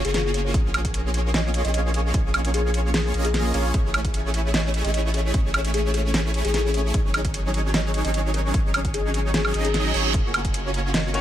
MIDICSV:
0, 0, Header, 1, 7, 480
1, 0, Start_track
1, 0, Tempo, 400000
1, 649, Time_signature, 4, 2, 24, 8
1, 13451, End_track
2, 0, Start_track
2, 0, Title_t, "Kalimba"
2, 0, Program_c, 0, 108
2, 56, Note_on_c, 0, 68, 86
2, 147, Note_off_c, 0, 68, 0
2, 170, Note_on_c, 0, 68, 90
2, 251, Note_off_c, 0, 68, 0
2, 296, Note_on_c, 0, 68, 82
2, 369, Note_off_c, 0, 68, 0
2, 411, Note_on_c, 0, 73, 86
2, 491, Note_off_c, 0, 73, 0
2, 536, Note_on_c, 0, 73, 78
2, 608, Note_off_c, 0, 73, 0
2, 1610, Note_on_c, 0, 75, 96
2, 1793, Note_off_c, 0, 75, 0
2, 1976, Note_on_c, 0, 75, 88
2, 2049, Note_off_c, 0, 75, 0
2, 2090, Note_on_c, 0, 75, 79
2, 2171, Note_off_c, 0, 75, 0
2, 2329, Note_on_c, 0, 70, 91
2, 2512, Note_off_c, 0, 70, 0
2, 3049, Note_on_c, 0, 68, 91
2, 3266, Note_off_c, 0, 68, 0
2, 3528, Note_on_c, 0, 68, 95
2, 3712, Note_off_c, 0, 68, 0
2, 3895, Note_on_c, 0, 68, 91
2, 4249, Note_off_c, 0, 68, 0
2, 5449, Note_on_c, 0, 75, 93
2, 5632, Note_off_c, 0, 75, 0
2, 5816, Note_on_c, 0, 75, 88
2, 5889, Note_off_c, 0, 75, 0
2, 5928, Note_on_c, 0, 75, 77
2, 6010, Note_off_c, 0, 75, 0
2, 6169, Note_on_c, 0, 69, 86
2, 6352, Note_off_c, 0, 69, 0
2, 6888, Note_on_c, 0, 68, 91
2, 7106, Note_off_c, 0, 68, 0
2, 7127, Note_on_c, 0, 69, 99
2, 7495, Note_off_c, 0, 69, 0
2, 7734, Note_on_c, 0, 68, 92
2, 7826, Note_off_c, 0, 68, 0
2, 7848, Note_on_c, 0, 68, 94
2, 7930, Note_off_c, 0, 68, 0
2, 7975, Note_on_c, 0, 68, 80
2, 8048, Note_off_c, 0, 68, 0
2, 8089, Note_on_c, 0, 73, 92
2, 8170, Note_off_c, 0, 73, 0
2, 8215, Note_on_c, 0, 73, 76
2, 8288, Note_off_c, 0, 73, 0
2, 9289, Note_on_c, 0, 75, 96
2, 9472, Note_off_c, 0, 75, 0
2, 9655, Note_on_c, 0, 75, 92
2, 9728, Note_off_c, 0, 75, 0
2, 9769, Note_on_c, 0, 75, 76
2, 9850, Note_off_c, 0, 75, 0
2, 10008, Note_on_c, 0, 70, 92
2, 10191, Note_off_c, 0, 70, 0
2, 10728, Note_on_c, 0, 68, 95
2, 10946, Note_off_c, 0, 68, 0
2, 11210, Note_on_c, 0, 68, 94
2, 11392, Note_off_c, 0, 68, 0
2, 11576, Note_on_c, 0, 68, 92
2, 11930, Note_off_c, 0, 68, 0
2, 13129, Note_on_c, 0, 75, 96
2, 13312, Note_off_c, 0, 75, 0
2, 13451, End_track
3, 0, Start_track
3, 0, Title_t, "Grand piano"
3, 0, Program_c, 1, 0
3, 0, Control_c, 1, 64, 127
3, 662, Control_c, 1, 64, 0
3, 12402, Control_c, 1, 64, 127
3, 13356, Note_on_c, 1, 58, 92
3, 13362, Note_on_c, 1, 61, 82
3, 13368, Note_on_c, 1, 65, 83
3, 13374, Note_on_c, 1, 66, 82
3, 13379, Note_on_c, 1, 73, 102
3, 13451, Note_off_c, 1, 58, 0
3, 13451, Note_off_c, 1, 61, 0
3, 13451, Note_off_c, 1, 65, 0
3, 13451, Note_off_c, 1, 66, 0
3, 13451, Note_off_c, 1, 73, 0
3, 13451, End_track
4, 0, Start_track
4, 0, Title_t, "Supersaw synth"
4, 0, Program_c, 2, 81
4, 57, Note_on_c, 2, 58, 82
4, 57, Note_on_c, 2, 61, 79
4, 57, Note_on_c, 2, 65, 79
4, 57, Note_on_c, 2, 66, 78
4, 58, Note_on_c, 2, 73, 91
4, 623, Note_off_c, 2, 58, 0
4, 623, Note_off_c, 2, 61, 0
4, 623, Note_off_c, 2, 65, 0
4, 623, Note_off_c, 2, 66, 0
4, 623, Note_off_c, 2, 73, 0
4, 1976, Note_on_c, 2, 58, 85
4, 1976, Note_on_c, 2, 61, 75
4, 1976, Note_on_c, 2, 65, 80
4, 1976, Note_on_c, 2, 68, 80
4, 1976, Note_on_c, 2, 73, 88
4, 2542, Note_off_c, 2, 58, 0
4, 2542, Note_off_c, 2, 61, 0
4, 2542, Note_off_c, 2, 65, 0
4, 2542, Note_off_c, 2, 68, 0
4, 2542, Note_off_c, 2, 73, 0
4, 2571, Note_on_c, 2, 58, 85
4, 3747, Note_off_c, 2, 58, 0
4, 3769, Note_on_c, 2, 58, 94
4, 3769, Note_on_c, 2, 61, 87
4, 3769, Note_on_c, 2, 65, 87
4, 3769, Note_on_c, 2, 68, 93
4, 3769, Note_on_c, 2, 75, 111
4, 4222, Note_off_c, 2, 58, 0
4, 4222, Note_off_c, 2, 61, 0
4, 4222, Note_off_c, 2, 65, 0
4, 4222, Note_off_c, 2, 68, 0
4, 4222, Note_off_c, 2, 75, 0
4, 4248, Note_on_c, 2, 61, 84
4, 4248, Note_on_c, 2, 68, 81
4, 4249, Note_on_c, 2, 58, 89
4, 4249, Note_on_c, 2, 65, 83
4, 4249, Note_on_c, 2, 73, 101
4, 4462, Note_off_c, 2, 58, 0
4, 4462, Note_off_c, 2, 61, 0
4, 4462, Note_off_c, 2, 65, 0
4, 4462, Note_off_c, 2, 68, 0
4, 4462, Note_off_c, 2, 73, 0
4, 4489, Note_on_c, 2, 57, 84
4, 5786, Note_off_c, 2, 57, 0
4, 5816, Note_on_c, 2, 57, 81
4, 5816, Note_on_c, 2, 61, 74
4, 5816, Note_on_c, 2, 64, 77
4, 5816, Note_on_c, 2, 68, 74
4, 5816, Note_on_c, 2, 73, 93
4, 6382, Note_off_c, 2, 57, 0
4, 6382, Note_off_c, 2, 61, 0
4, 6382, Note_off_c, 2, 64, 0
4, 6382, Note_off_c, 2, 68, 0
4, 6382, Note_off_c, 2, 73, 0
4, 6408, Note_on_c, 2, 57, 84
4, 6408, Note_on_c, 2, 68, 77
4, 6408, Note_on_c, 2, 73, 96
4, 6409, Note_on_c, 2, 61, 77
4, 6409, Note_on_c, 2, 64, 77
4, 7705, Note_off_c, 2, 57, 0
4, 7705, Note_off_c, 2, 61, 0
4, 7705, Note_off_c, 2, 64, 0
4, 7705, Note_off_c, 2, 68, 0
4, 7705, Note_off_c, 2, 73, 0
4, 7735, Note_on_c, 2, 57, 81
4, 7736, Note_on_c, 2, 61, 75
4, 7736, Note_on_c, 2, 64, 77
4, 7736, Note_on_c, 2, 68, 79
4, 7736, Note_on_c, 2, 73, 91
4, 8302, Note_off_c, 2, 57, 0
4, 8302, Note_off_c, 2, 61, 0
4, 8302, Note_off_c, 2, 64, 0
4, 8302, Note_off_c, 2, 68, 0
4, 8302, Note_off_c, 2, 73, 0
4, 8329, Note_on_c, 2, 54, 80
4, 8329, Note_on_c, 2, 61, 78
4, 8329, Note_on_c, 2, 63, 82
4, 8329, Note_on_c, 2, 68, 74
4, 8329, Note_on_c, 2, 73, 93
4, 9625, Note_off_c, 2, 54, 0
4, 9625, Note_off_c, 2, 61, 0
4, 9625, Note_off_c, 2, 68, 0
4, 9626, Note_off_c, 2, 63, 0
4, 9626, Note_off_c, 2, 73, 0
4, 9654, Note_on_c, 2, 54, 86
4, 9655, Note_on_c, 2, 61, 76
4, 9655, Note_on_c, 2, 63, 77
4, 9655, Note_on_c, 2, 68, 77
4, 9655, Note_on_c, 2, 73, 93
4, 10221, Note_off_c, 2, 54, 0
4, 10221, Note_off_c, 2, 61, 0
4, 10222, Note_off_c, 2, 63, 0
4, 10222, Note_off_c, 2, 68, 0
4, 10222, Note_off_c, 2, 73, 0
4, 10249, Note_on_c, 2, 61, 78
4, 10249, Note_on_c, 2, 68, 76
4, 10250, Note_on_c, 2, 54, 84
4, 10250, Note_on_c, 2, 63, 78
4, 10250, Note_on_c, 2, 73, 96
4, 11427, Note_off_c, 2, 54, 0
4, 11427, Note_off_c, 2, 61, 0
4, 11427, Note_off_c, 2, 63, 0
4, 11427, Note_off_c, 2, 68, 0
4, 11427, Note_off_c, 2, 73, 0
4, 11449, Note_on_c, 2, 54, 96
4, 11449, Note_on_c, 2, 61, 86
4, 11449, Note_on_c, 2, 63, 93
4, 11449, Note_on_c, 2, 68, 89
4, 11449, Note_on_c, 2, 75, 113
4, 11902, Note_off_c, 2, 54, 0
4, 11902, Note_off_c, 2, 61, 0
4, 11902, Note_off_c, 2, 63, 0
4, 11902, Note_off_c, 2, 68, 0
4, 11902, Note_off_c, 2, 75, 0
4, 11929, Note_on_c, 2, 54, 87
4, 11929, Note_on_c, 2, 61, 85
4, 11929, Note_on_c, 2, 63, 85
4, 11929, Note_on_c, 2, 68, 83
4, 11929, Note_on_c, 2, 73, 102
4, 12142, Note_off_c, 2, 54, 0
4, 12142, Note_off_c, 2, 61, 0
4, 12142, Note_off_c, 2, 63, 0
4, 12142, Note_off_c, 2, 68, 0
4, 12142, Note_off_c, 2, 73, 0
4, 12169, Note_on_c, 2, 58, 86
4, 12169, Note_on_c, 2, 61, 75
4, 12169, Note_on_c, 2, 65, 76
4, 12169, Note_on_c, 2, 66, 78
4, 12169, Note_on_c, 2, 73, 90
4, 13451, Note_off_c, 2, 58, 0
4, 13451, Note_off_c, 2, 61, 0
4, 13451, Note_off_c, 2, 65, 0
4, 13451, Note_off_c, 2, 66, 0
4, 13451, Note_off_c, 2, 73, 0
4, 13451, End_track
5, 0, Start_track
5, 0, Title_t, "Sub bass"
5, 0, Program_c, 3, 38
5, 56, Note_on_c, 3, 30, 101
5, 649, Note_on_c, 3, 34, 102
5, 667, Note_off_c, 3, 30, 0
5, 1951, Note_off_c, 3, 34, 0
5, 1976, Note_on_c, 3, 34, 101
5, 2547, Note_off_c, 3, 34, 0
5, 2569, Note_on_c, 3, 34, 103
5, 3747, Note_off_c, 3, 34, 0
5, 3768, Note_on_c, 3, 34, 94
5, 4226, Note_off_c, 3, 34, 0
5, 4249, Note_on_c, 3, 34, 94
5, 4466, Note_off_c, 3, 34, 0
5, 4489, Note_on_c, 3, 33, 94
5, 5790, Note_off_c, 3, 33, 0
5, 5815, Note_on_c, 3, 33, 95
5, 6386, Note_off_c, 3, 33, 0
5, 6409, Note_on_c, 3, 33, 96
5, 7711, Note_off_c, 3, 33, 0
5, 7736, Note_on_c, 3, 33, 97
5, 8307, Note_off_c, 3, 33, 0
5, 8330, Note_on_c, 3, 32, 104
5, 9631, Note_off_c, 3, 32, 0
5, 9656, Note_on_c, 3, 32, 102
5, 10227, Note_off_c, 3, 32, 0
5, 10249, Note_on_c, 3, 32, 101
5, 11427, Note_off_c, 3, 32, 0
5, 11449, Note_on_c, 3, 32, 96
5, 11907, Note_off_c, 3, 32, 0
5, 11929, Note_on_c, 3, 32, 93
5, 12169, Note_on_c, 3, 30, 97
5, 12187, Note_off_c, 3, 32, 0
5, 13451, Note_off_c, 3, 30, 0
5, 13451, End_track
6, 0, Start_track
6, 0, Title_t, "Reverse cymbal"
6, 0, Program_c, 4, 119
6, 11208, Note_on_c, 4, 60, 60
6, 12169, Note_off_c, 4, 60, 0
6, 13451, End_track
7, 0, Start_track
7, 0, Title_t, "Drums"
7, 57, Note_on_c, 9, 42, 69
7, 170, Note_off_c, 9, 42, 0
7, 170, Note_on_c, 9, 38, 69
7, 170, Note_on_c, 9, 42, 86
7, 290, Note_off_c, 9, 38, 0
7, 290, Note_off_c, 9, 42, 0
7, 411, Note_on_c, 9, 42, 65
7, 531, Note_off_c, 9, 42, 0
7, 649, Note_on_c, 9, 36, 126
7, 651, Note_on_c, 9, 42, 80
7, 769, Note_off_c, 9, 36, 0
7, 771, Note_off_c, 9, 42, 0
7, 891, Note_on_c, 9, 42, 68
7, 891, Note_on_c, 9, 76, 80
7, 1011, Note_off_c, 9, 42, 0
7, 1011, Note_off_c, 9, 76, 0
7, 1016, Note_on_c, 9, 36, 62
7, 1017, Note_on_c, 9, 42, 65
7, 1130, Note_off_c, 9, 42, 0
7, 1130, Note_on_c, 9, 42, 81
7, 1136, Note_off_c, 9, 36, 0
7, 1250, Note_off_c, 9, 42, 0
7, 1370, Note_on_c, 9, 42, 67
7, 1490, Note_off_c, 9, 42, 0
7, 1610, Note_on_c, 9, 38, 127
7, 1610, Note_on_c, 9, 42, 85
7, 1730, Note_off_c, 9, 38, 0
7, 1730, Note_off_c, 9, 42, 0
7, 1850, Note_on_c, 9, 42, 74
7, 1970, Note_off_c, 9, 42, 0
7, 1976, Note_on_c, 9, 42, 64
7, 2089, Note_off_c, 9, 42, 0
7, 2089, Note_on_c, 9, 42, 82
7, 2209, Note_off_c, 9, 42, 0
7, 2329, Note_on_c, 9, 42, 60
7, 2449, Note_off_c, 9, 42, 0
7, 2569, Note_on_c, 9, 36, 123
7, 2569, Note_on_c, 9, 42, 83
7, 2689, Note_off_c, 9, 36, 0
7, 2689, Note_off_c, 9, 42, 0
7, 2809, Note_on_c, 9, 42, 68
7, 2809, Note_on_c, 9, 76, 78
7, 2929, Note_off_c, 9, 42, 0
7, 2929, Note_off_c, 9, 76, 0
7, 2936, Note_on_c, 9, 42, 66
7, 3049, Note_off_c, 9, 42, 0
7, 3049, Note_on_c, 9, 42, 77
7, 3169, Note_off_c, 9, 42, 0
7, 3289, Note_on_c, 9, 42, 66
7, 3409, Note_off_c, 9, 42, 0
7, 3529, Note_on_c, 9, 38, 127
7, 3529, Note_on_c, 9, 42, 82
7, 3649, Note_off_c, 9, 38, 0
7, 3649, Note_off_c, 9, 42, 0
7, 3769, Note_on_c, 9, 42, 68
7, 3889, Note_off_c, 9, 42, 0
7, 3896, Note_on_c, 9, 42, 67
7, 4010, Note_off_c, 9, 42, 0
7, 4010, Note_on_c, 9, 38, 65
7, 4010, Note_on_c, 9, 42, 81
7, 4130, Note_off_c, 9, 38, 0
7, 4130, Note_off_c, 9, 42, 0
7, 4250, Note_on_c, 9, 42, 59
7, 4370, Note_off_c, 9, 42, 0
7, 4489, Note_on_c, 9, 36, 117
7, 4489, Note_on_c, 9, 42, 80
7, 4609, Note_off_c, 9, 36, 0
7, 4609, Note_off_c, 9, 42, 0
7, 4729, Note_on_c, 9, 42, 67
7, 4729, Note_on_c, 9, 76, 86
7, 4849, Note_off_c, 9, 42, 0
7, 4849, Note_off_c, 9, 76, 0
7, 4855, Note_on_c, 9, 42, 63
7, 4856, Note_on_c, 9, 36, 60
7, 4968, Note_off_c, 9, 42, 0
7, 4968, Note_on_c, 9, 42, 76
7, 4976, Note_off_c, 9, 36, 0
7, 5088, Note_off_c, 9, 42, 0
7, 5208, Note_on_c, 9, 42, 63
7, 5328, Note_off_c, 9, 42, 0
7, 5448, Note_on_c, 9, 38, 125
7, 5448, Note_on_c, 9, 42, 80
7, 5568, Note_off_c, 9, 38, 0
7, 5568, Note_off_c, 9, 42, 0
7, 5688, Note_on_c, 9, 42, 67
7, 5808, Note_off_c, 9, 42, 0
7, 5815, Note_on_c, 9, 42, 62
7, 5929, Note_off_c, 9, 42, 0
7, 5929, Note_on_c, 9, 42, 78
7, 6049, Note_off_c, 9, 42, 0
7, 6168, Note_on_c, 9, 42, 60
7, 6288, Note_off_c, 9, 42, 0
7, 6408, Note_on_c, 9, 42, 75
7, 6409, Note_on_c, 9, 36, 115
7, 6528, Note_off_c, 9, 42, 0
7, 6529, Note_off_c, 9, 36, 0
7, 6649, Note_on_c, 9, 42, 66
7, 6649, Note_on_c, 9, 76, 87
7, 6769, Note_off_c, 9, 42, 0
7, 6769, Note_off_c, 9, 76, 0
7, 6774, Note_on_c, 9, 42, 61
7, 6888, Note_off_c, 9, 42, 0
7, 6888, Note_on_c, 9, 42, 76
7, 7008, Note_off_c, 9, 42, 0
7, 7129, Note_on_c, 9, 42, 62
7, 7249, Note_off_c, 9, 42, 0
7, 7369, Note_on_c, 9, 38, 116
7, 7369, Note_on_c, 9, 42, 80
7, 7489, Note_off_c, 9, 38, 0
7, 7489, Note_off_c, 9, 42, 0
7, 7609, Note_on_c, 9, 42, 69
7, 7729, Note_off_c, 9, 42, 0
7, 7736, Note_on_c, 9, 42, 60
7, 7849, Note_off_c, 9, 42, 0
7, 7849, Note_on_c, 9, 38, 62
7, 7849, Note_on_c, 9, 42, 80
7, 7969, Note_off_c, 9, 38, 0
7, 7969, Note_off_c, 9, 42, 0
7, 8089, Note_on_c, 9, 42, 59
7, 8209, Note_off_c, 9, 42, 0
7, 8329, Note_on_c, 9, 36, 114
7, 8330, Note_on_c, 9, 42, 80
7, 8449, Note_off_c, 9, 36, 0
7, 8450, Note_off_c, 9, 42, 0
7, 8569, Note_on_c, 9, 42, 65
7, 8569, Note_on_c, 9, 76, 81
7, 8689, Note_off_c, 9, 42, 0
7, 8689, Note_off_c, 9, 76, 0
7, 8695, Note_on_c, 9, 42, 63
7, 8696, Note_on_c, 9, 36, 59
7, 8809, Note_off_c, 9, 42, 0
7, 8809, Note_on_c, 9, 42, 75
7, 8816, Note_off_c, 9, 36, 0
7, 8929, Note_off_c, 9, 42, 0
7, 9049, Note_on_c, 9, 42, 67
7, 9169, Note_off_c, 9, 42, 0
7, 9289, Note_on_c, 9, 38, 125
7, 9289, Note_on_c, 9, 42, 80
7, 9409, Note_off_c, 9, 38, 0
7, 9409, Note_off_c, 9, 42, 0
7, 9528, Note_on_c, 9, 42, 70
7, 9648, Note_off_c, 9, 42, 0
7, 9655, Note_on_c, 9, 42, 61
7, 9769, Note_off_c, 9, 42, 0
7, 9769, Note_on_c, 9, 42, 85
7, 9889, Note_off_c, 9, 42, 0
7, 10009, Note_on_c, 9, 42, 62
7, 10129, Note_off_c, 9, 42, 0
7, 10249, Note_on_c, 9, 36, 119
7, 10249, Note_on_c, 9, 42, 82
7, 10369, Note_off_c, 9, 36, 0
7, 10369, Note_off_c, 9, 42, 0
7, 10489, Note_on_c, 9, 42, 73
7, 10489, Note_on_c, 9, 76, 83
7, 10609, Note_off_c, 9, 42, 0
7, 10609, Note_off_c, 9, 76, 0
7, 10616, Note_on_c, 9, 36, 60
7, 10616, Note_on_c, 9, 42, 65
7, 10729, Note_off_c, 9, 42, 0
7, 10729, Note_on_c, 9, 42, 78
7, 10736, Note_off_c, 9, 36, 0
7, 10849, Note_off_c, 9, 42, 0
7, 10970, Note_on_c, 9, 42, 66
7, 11090, Note_off_c, 9, 42, 0
7, 11209, Note_on_c, 9, 38, 122
7, 11209, Note_on_c, 9, 42, 85
7, 11329, Note_off_c, 9, 38, 0
7, 11329, Note_off_c, 9, 42, 0
7, 11336, Note_on_c, 9, 76, 62
7, 11450, Note_on_c, 9, 42, 72
7, 11456, Note_off_c, 9, 76, 0
7, 11570, Note_off_c, 9, 42, 0
7, 11576, Note_on_c, 9, 42, 66
7, 11690, Note_off_c, 9, 42, 0
7, 11690, Note_on_c, 9, 38, 60
7, 11690, Note_on_c, 9, 42, 83
7, 11810, Note_off_c, 9, 38, 0
7, 11810, Note_off_c, 9, 42, 0
7, 11929, Note_on_c, 9, 46, 61
7, 12049, Note_off_c, 9, 46, 0
7, 12169, Note_on_c, 9, 36, 118
7, 12169, Note_on_c, 9, 42, 84
7, 12289, Note_off_c, 9, 36, 0
7, 12289, Note_off_c, 9, 42, 0
7, 12409, Note_on_c, 9, 42, 72
7, 12409, Note_on_c, 9, 76, 82
7, 12529, Note_off_c, 9, 42, 0
7, 12529, Note_off_c, 9, 76, 0
7, 12536, Note_on_c, 9, 36, 63
7, 12536, Note_on_c, 9, 42, 69
7, 12650, Note_off_c, 9, 42, 0
7, 12650, Note_on_c, 9, 42, 80
7, 12656, Note_off_c, 9, 36, 0
7, 12770, Note_off_c, 9, 42, 0
7, 12889, Note_on_c, 9, 42, 64
7, 13009, Note_off_c, 9, 42, 0
7, 13129, Note_on_c, 9, 38, 127
7, 13129, Note_on_c, 9, 42, 90
7, 13249, Note_off_c, 9, 38, 0
7, 13249, Note_off_c, 9, 42, 0
7, 13370, Note_on_c, 9, 42, 75
7, 13451, Note_off_c, 9, 42, 0
7, 13451, End_track
0, 0, End_of_file